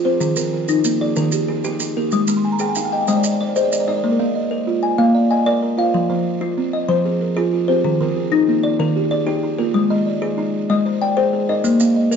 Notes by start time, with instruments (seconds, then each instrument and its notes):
Already playing: kalimba F4
0.05 kalimba C4 G#4 C5
0.20 kalimba D#3, maracas
0.36 kalimba D#3 A#4, maracas
0.53 kalimba A#4
0.68 kalimba D#4, maracas
0.84 kalimba A#3, maracas
1.01 kalimba G#4 D5
1.16 kalimba D#3 A#4, maracas
1.32 kalimba G4, maracas
1.48 kalimba D#4 G#4
1.64 kalimba D#4 G4, maracas
1.80 kalimba D#4, maracas
1.97 kalimba A#3 G4 A#4
2.11 kalimba G#3, maracas
2.27 kalimba G#3, maracas
2.37 kalimba C6
2.45 kalimba G#5
2.52 kalimba A#5
2.59 kalimba G#4 G5, maracas
2.69 kalimba G#5
2.75 kalimba D#4 F5, maracas
2.85 kalimba G5
2.92 kalimba D#5 G5
3.01 kalimba F5
3.08 kalimba G#3 C5 D#5, maracas
3.17 kalimba D5
3.24 kalimba D#5, maracas
3.33 kalimba C5
3.41 kalimba D5
3.49 kalimba C5
3.56 kalimba G#4 C5 D#5, maracas
3.64 kalimba D5
3.72 kalimba D#5, maracas
3.80 kalimba D5
3.88 kalimba D#4 D#5
3.97 kalimba D5
4.04 kalimba A#3 C5
4.11 kalimba A#4
4.19 kalimba A#3 F5
4.35 kalimba D#5
4.51 kalimba A#4
4.67 kalimba F4
4.83 kalimba G#5
4.98 kalimba A#3 F5
5.15 kalimba D5
5.30 kalimba D#5 G#5
5.46 kalimba A#4 D5
5.62 kalimba A#4
5.78 kalimba F4 C5 F5
5.94 kalimba F3
6.10 kalimba F3 C5
6.41 kalimba F4
6.57 kalimba C4
6.73 kalimba D#5
6.89 kalimba F3 C5
7.05 kalimba G#4
7.21 kalimba A#4
7.37 kalimba F4 G#4
7.53 kalimba F4
7.68 kalimba C4 G4 C5
7.84 kalimba D#3
8.01 kalimba D#3 A#4
8.17 kalimba G#4
8.32 kalimba D#4
8.48 kalimba A#3
8.63 kalimba D5
8.79 kalimba D#3 A#4
8.96 kalimba G4
9.11 kalimba G#4 D5
9.27 kalimba D#4 G4
9.43 kalimba D#4
9.58 kalimba A#3 F4 A#4
9.74 kalimba G#3
9.90 kalimba G#3 D#5
10.06 kalimba D5
10.22 kalimba G#4
10.38 kalimba D#4
10.70 kalimba G#3 D#5
10.86 kalimba C5
11.02 kalimba D5 G5
11.17 kalimba G#4 C5
11.33 kalimba G#4
11.49 kalimba D#4 A#4 D#5
11.64 kalimba A#3, maracas
11.80 kalimba A#3 F5, maracas
11.96 kalimba D#5
12.11 kalimba A#4, maracas